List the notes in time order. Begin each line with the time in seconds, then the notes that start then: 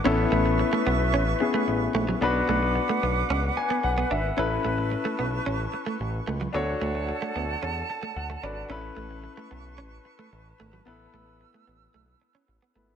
0.04 A1 B3 C#4 E4 A4 B4 E5 C#6
0.32 A1 A3
0.46 muted clean electric guitar stroke
0.59 muted clean electric guitar stroke
0.73 A3
0.86 B1 B3
1.14 A1 C#4
1.40 B3 C#4 E4 G#4, muted clean electric guitar stroke
1.54 A3
1.67 A1, muted clean electric guitar stroke
1.95 A#1 A3
2.09 F#3
2.21 B1 B3 D4 F#4 B4 F#5 D6
2.49 B1 A3
2.63 muted clean electric guitar stroke
2.76 muted clean electric guitar stroke
2.89 A3
3.03 B1 B3
3.30 C#2 C#4
3.57 G#5, muted clean electric guitar stroke
3.70 B3
3.83 B1 F#5, muted clean electric guitar stroke
3.98 B3
4.11 G#1 D4 E5
4.37 A1 C#4 E4 A4 B4 A5 C#6
4.64 A1 A3
4.78 muted clean electric guitar stroke
4.92 muted clean electric guitar stroke
5.05 A3
5.19 B1 B3
5.46 A1 C#4
5.74 muted clean electric guitar stroke
5.86 A3
6.00 A1, muted clean electric guitar stroke
6.27 C#2 A3
6.41 F#3
6.53 D2 B3 D4 F#4 A4 C#5 F#5 A5
6.81 D2 A3
6.95 muted clean electric guitar stroke
7.09 muted clean electric guitar stroke
7.22 A3
7.36 D2 B3
7.63 E2 C#4
7.89 A5, muted clean electric guitar stroke
8.03 A3
8.16 D2 F#5, muted clean electric guitar stroke
8.30 A3
8.43 G#1 C#4 D4 F#4 A4 B4 D5
8.69 A1 C#4 E4 A4 B4 A5 C#6
8.96 A1 A3
9.11 muted clean electric guitar stroke
9.24 muted clean electric guitar stroke
9.37 A3
9.51 B1 B3
9.78 A1 C#4
10.05 muted clean electric guitar stroke
10.19 A3
10.33 A1, muted clean electric guitar stroke
10.60 G#1 A3
10.73 F#3
10.85 A1 B3 E4 A4 B4 E6
11.14 A1 A3
11.27 muted clean electric guitar stroke
11.41 muted clean electric guitar stroke
11.54 A3
11.67 A1 B3
11.94 B1 A3
12.21 muted clean electric guitar stroke
12.35 C#4
12.48 A1, muted clean electric guitar stroke
12.62 B3
12.75 G#1 A3 B3 E4 A4 B4